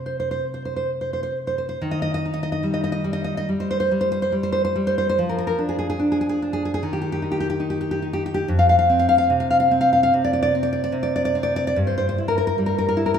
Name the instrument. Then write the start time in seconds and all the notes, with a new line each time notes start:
nylon-string guitar
Already playing: C3
0.06 C5
0.20 C5
0.31 C5
0.54 C5
0.65 C5
0.76 C5
1.01 C5
1.13 C5
1.23 C5
1.47 C5
1.58 C5
1.69 C5
1.82 D#3
1.91 D#5
2.02 D#5
2.14 D#5
2.26 D#4
2.34 D#5
2.43 D#5
2.52 D#5
2.63 G3
2.74 D#5
2.84 D#5
2.92 D#5
3.04 G3
3.13 D#5
3.24 D#5
3.37 D#5
3.49 G3
3.60 C5
3.71 C5
3.80 C5
3.91 G3
4.01 C5
4.12 C5
4.22 C5
4.32 G3
4.43 C5
4.52 C5
4.65 C5
4.76 G3
4.87 C5
4.98 C5
5.09 C5
5.19 F3
5.29 A#4
5.39 A#4
5.47 A#4
5.59 D4
5.69 G#4
5.79 G#4
5.90 G#4
5.99 D4
6.12 G#4
6.21 G#4
6.29 G#4
6.42 D4
6.53 G#4
6.65 G#4
6.74 G#4
6.83 D#3
6.93 G4
7.02 G4
7.12 G4
7.22 D#4
7.32 G4
7.40 G4
7.50 G4
7.60 D#4
7.70 G4
7.81 G4
7.91 G4
8.02 D#4
8.13 G4
8.26 G4
8.34 G4
8.48 F2
8.59 F5
8.69 F5
8.79 F5
8.90 C4
8.99 F5
9.09 F5
9.18 F5
9.30 C3
9.40 F5
9.51 F5
9.60 F5
9.71 C4
9.81 F5
9.93 F5
10.03 F5
10.14 C3
10.24 D5
10.33 D5
10.43 D5
10.55 C4
10.63 D5
10.73 D5
10.84 D5
10.92 C3
11.03 D5
11.16 D5
11.25 D5
11.35 C4
11.43 D5
11.56 D5
11.67 D5
11.76 G2
11.87 C5
11.98 C5
12.09 C5
12.18 E4
12.28 A#4
12.38 A#4
12.47 A#4
12.58 G3
12.66 A#4
12.78 A#4
12.89 A#4
12.97 E4
13.06 A#4
13.14 A#4